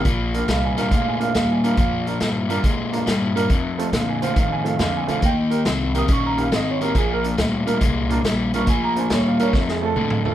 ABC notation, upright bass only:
X:1
M:4/4
L:1/8
Q:"Swing" 1/4=139
K:Bbmix
V:1 name="Upright bass" clef=bass
B,,,2 C,,2 D,,2 E,,2 | F,,2 G,,2 A,,2 G,,2 | F,,2 B,,2 =A,,2 F,, z | E,,2 C,,2 B,,,2 A,,,2 |
B,,,2 D,,2 C,,2 B,,,2 | D,,2 E,,2 F,,2 =A,,2 |]